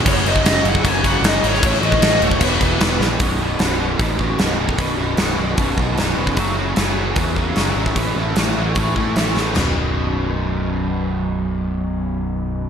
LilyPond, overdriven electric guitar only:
\new Staff \with { instrumentName = "Overdriven electric guitar" } { \clef bass \time 4/4 \key b \mixolydian \tempo 4 = 151 <fis, cis fis>8 <fis, cis fis>8 <fis, cis fis>8 <fis, cis fis>8 <fis, cis fis>8 <fis, cis fis>8 <fis, cis fis>8 <fis, cis fis>8 | <a, e a>8 <a, e a>8 <a, e a>8 <a, e a>8 <e, b, e>8 <e, b, e>8 <e, b, e>8 <e, b, e>8 | <b,, fis, b,>8 <b,, fis, b,>8 <b,, fis, b,>8 <b,, fis, b,>8 <b,, fis, b,>8 <b,, fis, b,>8 <b,, fis, b,>8 <b,, fis, b,>8 | <b,, fis, b,>8 <b,, fis, b,>8 <b,, fis, b,>8 <b,, fis, b,>8 <b,, fis, b,>8 <b,, fis, b,>8 <b,, fis, b,>8 <b,, fis, b,>8 |
<fis, cis fis>8 <fis, cis fis>8 <fis, cis fis>8 <fis, cis fis>8 <fis, cis fis>8 <fis, cis fis>8 <fis, cis fis>8 <fis, cis fis>8 | <a, e a>8 <a, e a>8 <a, e a>8 <a, e a>8 <a, e a>8 <a, e a>8 <a, e a>8 <a, e a>8 | <b,, fis, b,>1~ | <b,, fis, b,>1 | }